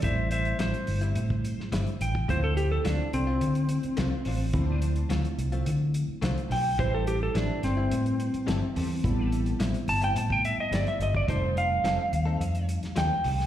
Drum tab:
HH |x-xxxxoxx-x-xxx-|x-x-x-x-xxxxx-o-|x-xxxxxxx-x-xxo-|x-x-x-x-xxxxx-o-|
SD |----o------oo---|----o-------o---|----o-------o---|----o-o-----o---|
BD |o--------o-----o|o---------------|o---------------|o---------------|

HH |x-xxxxoxx-x-xxx-|x-x-x-x-xxxxx-o-|
SD |----o-------o---|----o------oo--o|
BD |o--------o-----o|o---------------|